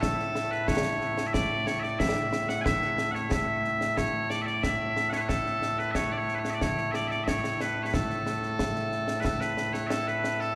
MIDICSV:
0, 0, Header, 1, 3, 480
1, 0, Start_track
1, 0, Key_signature, 3, "major"
1, 0, Tempo, 659341
1, 12, Time_signature, 2, 2, 24, 8
1, 7680, End_track
2, 0, Start_track
2, 0, Title_t, "Bagpipes"
2, 0, Program_c, 0, 109
2, 0, Note_on_c, 0, 45, 89
2, 0, Note_on_c, 0, 57, 89
2, 7, Note_on_c, 0, 69, 96
2, 371, Note_off_c, 0, 69, 0
2, 371, Note_on_c, 0, 71, 87
2, 493, Note_off_c, 0, 71, 0
2, 493, Note_on_c, 0, 73, 101
2, 923, Note_off_c, 0, 73, 0
2, 923, Note_on_c, 0, 76, 78
2, 972, Note_off_c, 0, 76, 0
2, 972, Note_on_c, 0, 74, 106
2, 1211, Note_off_c, 0, 74, 0
2, 1211, Note_on_c, 0, 73, 96
2, 1307, Note_off_c, 0, 73, 0
2, 1307, Note_on_c, 0, 76, 93
2, 1334, Note_off_c, 0, 76, 0
2, 1334, Note_on_c, 0, 74, 93
2, 1451, Note_off_c, 0, 74, 0
2, 1451, Note_on_c, 0, 76, 108
2, 1809, Note_off_c, 0, 76, 0
2, 1809, Note_on_c, 0, 78, 100
2, 1900, Note_off_c, 0, 78, 0
2, 1900, Note_on_c, 0, 80, 115
2, 1926, Note_off_c, 0, 80, 0
2, 1926, Note_on_c, 0, 76, 115
2, 2263, Note_off_c, 0, 76, 0
2, 2263, Note_on_c, 0, 78, 89
2, 2290, Note_off_c, 0, 78, 0
2, 2290, Note_on_c, 0, 73, 89
2, 2412, Note_off_c, 0, 73, 0
2, 2412, Note_on_c, 0, 76, 103
2, 2892, Note_off_c, 0, 76, 0
2, 2892, Note_on_c, 0, 73, 103
2, 3128, Note_off_c, 0, 73, 0
2, 3128, Note_on_c, 0, 74, 96
2, 3217, Note_off_c, 0, 74, 0
2, 3217, Note_on_c, 0, 76, 89
2, 3248, Note_off_c, 0, 76, 0
2, 3248, Note_on_c, 0, 74, 89
2, 3373, Note_off_c, 0, 74, 0
2, 3373, Note_on_c, 0, 76, 104
2, 3707, Note_off_c, 0, 76, 0
2, 3707, Note_on_c, 0, 78, 94
2, 3734, Note_off_c, 0, 78, 0
2, 3734, Note_on_c, 0, 73, 94
2, 3764, Note_off_c, 0, 73, 0
2, 3764, Note_on_c, 0, 71, 75
2, 3791, Note_off_c, 0, 71, 0
2, 3791, Note_on_c, 0, 73, 85
2, 3849, Note_off_c, 0, 73, 0
2, 3849, Note_on_c, 0, 69, 94
2, 4213, Note_off_c, 0, 69, 0
2, 4213, Note_on_c, 0, 71, 82
2, 4304, Note_off_c, 0, 71, 0
2, 4304, Note_on_c, 0, 76, 100
2, 4334, Note_off_c, 0, 76, 0
2, 4334, Note_on_c, 0, 73, 100
2, 4455, Note_off_c, 0, 73, 0
2, 4455, Note_on_c, 0, 74, 68
2, 4493, Note_off_c, 0, 74, 0
2, 4493, Note_on_c, 0, 73, 99
2, 4620, Note_off_c, 0, 73, 0
2, 4620, Note_on_c, 0, 71, 64
2, 4650, Note_off_c, 0, 71, 0
2, 4650, Note_on_c, 0, 73, 89
2, 4734, Note_off_c, 0, 73, 0
2, 4734, Note_on_c, 0, 76, 74
2, 4765, Note_off_c, 0, 76, 0
2, 4765, Note_on_c, 0, 74, 74
2, 4816, Note_off_c, 0, 74, 0
2, 4816, Note_on_c, 0, 73, 100
2, 5035, Note_off_c, 0, 73, 0
2, 5035, Note_on_c, 0, 76, 91
2, 5061, Note_off_c, 0, 76, 0
2, 5061, Note_on_c, 0, 74, 91
2, 5152, Note_off_c, 0, 74, 0
2, 5152, Note_on_c, 0, 76, 80
2, 5177, Note_off_c, 0, 76, 0
2, 5177, Note_on_c, 0, 74, 80
2, 5272, Note_off_c, 0, 74, 0
2, 5272, Note_on_c, 0, 76, 94
2, 5299, Note_off_c, 0, 76, 0
2, 5299, Note_on_c, 0, 73, 94
2, 5543, Note_off_c, 0, 73, 0
2, 5543, Note_on_c, 0, 71, 82
2, 5698, Note_off_c, 0, 71, 0
2, 5698, Note_on_c, 0, 73, 61
2, 5725, Note_off_c, 0, 73, 0
2, 5725, Note_on_c, 0, 71, 61
2, 5779, Note_off_c, 0, 71, 0
2, 5779, Note_on_c, 0, 69, 83
2, 6699, Note_off_c, 0, 69, 0
2, 6699, Note_on_c, 0, 71, 73
2, 6731, Note_off_c, 0, 71, 0
2, 6731, Note_on_c, 0, 69, 95
2, 6846, Note_off_c, 0, 69, 0
2, 6846, Note_on_c, 0, 71, 91
2, 7083, Note_off_c, 0, 71, 0
2, 7083, Note_on_c, 0, 73, 94
2, 7185, Note_off_c, 0, 73, 0
2, 7185, Note_on_c, 0, 76, 93
2, 7210, Note_off_c, 0, 76, 0
2, 7210, Note_on_c, 0, 69, 93
2, 7334, Note_off_c, 0, 69, 0
2, 7334, Note_on_c, 0, 71, 94
2, 7572, Note_off_c, 0, 71, 0
2, 7572, Note_on_c, 0, 69, 94
2, 7680, Note_off_c, 0, 45, 0
2, 7680, Note_off_c, 0, 57, 0
2, 7680, Note_off_c, 0, 69, 0
2, 7680, End_track
3, 0, Start_track
3, 0, Title_t, "Drums"
3, 19, Note_on_c, 9, 35, 60
3, 19, Note_on_c, 9, 38, 96
3, 92, Note_off_c, 9, 35, 0
3, 92, Note_off_c, 9, 38, 0
3, 143, Note_on_c, 9, 38, 30
3, 216, Note_off_c, 9, 38, 0
3, 258, Note_on_c, 9, 38, 79
3, 331, Note_off_c, 9, 38, 0
3, 378, Note_on_c, 9, 38, 29
3, 451, Note_off_c, 9, 38, 0
3, 496, Note_on_c, 9, 35, 63
3, 496, Note_on_c, 9, 38, 111
3, 568, Note_off_c, 9, 35, 0
3, 568, Note_off_c, 9, 38, 0
3, 736, Note_on_c, 9, 38, 31
3, 809, Note_off_c, 9, 38, 0
3, 856, Note_on_c, 9, 38, 84
3, 929, Note_off_c, 9, 38, 0
3, 977, Note_on_c, 9, 35, 64
3, 977, Note_on_c, 9, 38, 102
3, 1050, Note_off_c, 9, 35, 0
3, 1050, Note_off_c, 9, 38, 0
3, 1216, Note_on_c, 9, 38, 81
3, 1289, Note_off_c, 9, 38, 0
3, 1337, Note_on_c, 9, 38, 30
3, 1410, Note_off_c, 9, 38, 0
3, 1455, Note_on_c, 9, 35, 65
3, 1455, Note_on_c, 9, 38, 110
3, 1528, Note_off_c, 9, 35, 0
3, 1528, Note_off_c, 9, 38, 0
3, 1693, Note_on_c, 9, 38, 88
3, 1766, Note_off_c, 9, 38, 0
3, 1814, Note_on_c, 9, 38, 77
3, 1887, Note_off_c, 9, 38, 0
3, 1935, Note_on_c, 9, 35, 67
3, 1935, Note_on_c, 9, 38, 108
3, 2007, Note_off_c, 9, 35, 0
3, 2007, Note_off_c, 9, 38, 0
3, 2052, Note_on_c, 9, 38, 31
3, 2125, Note_off_c, 9, 38, 0
3, 2172, Note_on_c, 9, 38, 79
3, 2244, Note_off_c, 9, 38, 0
3, 2294, Note_on_c, 9, 38, 30
3, 2367, Note_off_c, 9, 38, 0
3, 2412, Note_on_c, 9, 35, 58
3, 2412, Note_on_c, 9, 38, 103
3, 2485, Note_off_c, 9, 35, 0
3, 2485, Note_off_c, 9, 38, 0
3, 2654, Note_on_c, 9, 38, 27
3, 2726, Note_off_c, 9, 38, 0
3, 2774, Note_on_c, 9, 38, 70
3, 2847, Note_off_c, 9, 38, 0
3, 2894, Note_on_c, 9, 35, 50
3, 2894, Note_on_c, 9, 38, 86
3, 2967, Note_off_c, 9, 35, 0
3, 2967, Note_off_c, 9, 38, 0
3, 3133, Note_on_c, 9, 38, 68
3, 3206, Note_off_c, 9, 38, 0
3, 3256, Note_on_c, 9, 38, 24
3, 3329, Note_off_c, 9, 38, 0
3, 3374, Note_on_c, 9, 35, 47
3, 3374, Note_on_c, 9, 38, 88
3, 3447, Note_off_c, 9, 35, 0
3, 3447, Note_off_c, 9, 38, 0
3, 3615, Note_on_c, 9, 38, 68
3, 3688, Note_off_c, 9, 38, 0
3, 3732, Note_on_c, 9, 38, 65
3, 3805, Note_off_c, 9, 38, 0
3, 3853, Note_on_c, 9, 35, 51
3, 3853, Note_on_c, 9, 38, 79
3, 3926, Note_off_c, 9, 35, 0
3, 3926, Note_off_c, 9, 38, 0
3, 3975, Note_on_c, 9, 38, 23
3, 4048, Note_off_c, 9, 38, 0
3, 4094, Note_on_c, 9, 38, 64
3, 4167, Note_off_c, 9, 38, 0
3, 4216, Note_on_c, 9, 38, 25
3, 4288, Note_off_c, 9, 38, 0
3, 4331, Note_on_c, 9, 35, 49
3, 4331, Note_on_c, 9, 38, 89
3, 4404, Note_off_c, 9, 35, 0
3, 4404, Note_off_c, 9, 38, 0
3, 4576, Note_on_c, 9, 38, 26
3, 4648, Note_off_c, 9, 38, 0
3, 4694, Note_on_c, 9, 38, 71
3, 4767, Note_off_c, 9, 38, 0
3, 4816, Note_on_c, 9, 35, 54
3, 4816, Note_on_c, 9, 38, 88
3, 4888, Note_off_c, 9, 35, 0
3, 4888, Note_off_c, 9, 38, 0
3, 4934, Note_on_c, 9, 38, 26
3, 5007, Note_off_c, 9, 38, 0
3, 5053, Note_on_c, 9, 38, 67
3, 5126, Note_off_c, 9, 38, 0
3, 5176, Note_on_c, 9, 38, 26
3, 5249, Note_off_c, 9, 38, 0
3, 5298, Note_on_c, 9, 35, 54
3, 5298, Note_on_c, 9, 38, 96
3, 5370, Note_off_c, 9, 35, 0
3, 5370, Note_off_c, 9, 38, 0
3, 5418, Note_on_c, 9, 38, 69
3, 5491, Note_off_c, 9, 38, 0
3, 5537, Note_on_c, 9, 38, 79
3, 5610, Note_off_c, 9, 38, 0
3, 5778, Note_on_c, 9, 35, 60
3, 5778, Note_on_c, 9, 38, 99
3, 5851, Note_off_c, 9, 35, 0
3, 5851, Note_off_c, 9, 38, 0
3, 5899, Note_on_c, 9, 38, 28
3, 5972, Note_off_c, 9, 38, 0
3, 6017, Note_on_c, 9, 38, 75
3, 6090, Note_off_c, 9, 38, 0
3, 6137, Note_on_c, 9, 38, 29
3, 6210, Note_off_c, 9, 38, 0
3, 6256, Note_on_c, 9, 35, 55
3, 6256, Note_on_c, 9, 38, 98
3, 6329, Note_off_c, 9, 35, 0
3, 6329, Note_off_c, 9, 38, 0
3, 6375, Note_on_c, 9, 38, 31
3, 6448, Note_off_c, 9, 38, 0
3, 6493, Note_on_c, 9, 38, 29
3, 6566, Note_off_c, 9, 38, 0
3, 6609, Note_on_c, 9, 38, 77
3, 6682, Note_off_c, 9, 38, 0
3, 6731, Note_on_c, 9, 35, 54
3, 6731, Note_on_c, 9, 38, 91
3, 6804, Note_off_c, 9, 35, 0
3, 6804, Note_off_c, 9, 38, 0
3, 6851, Note_on_c, 9, 38, 63
3, 6924, Note_off_c, 9, 38, 0
3, 6970, Note_on_c, 9, 38, 68
3, 7043, Note_off_c, 9, 38, 0
3, 7091, Note_on_c, 9, 38, 64
3, 7164, Note_off_c, 9, 38, 0
3, 7210, Note_on_c, 9, 38, 96
3, 7283, Note_off_c, 9, 38, 0
3, 7337, Note_on_c, 9, 38, 25
3, 7410, Note_off_c, 9, 38, 0
3, 7457, Note_on_c, 9, 38, 79
3, 7530, Note_off_c, 9, 38, 0
3, 7579, Note_on_c, 9, 38, 26
3, 7652, Note_off_c, 9, 38, 0
3, 7680, End_track
0, 0, End_of_file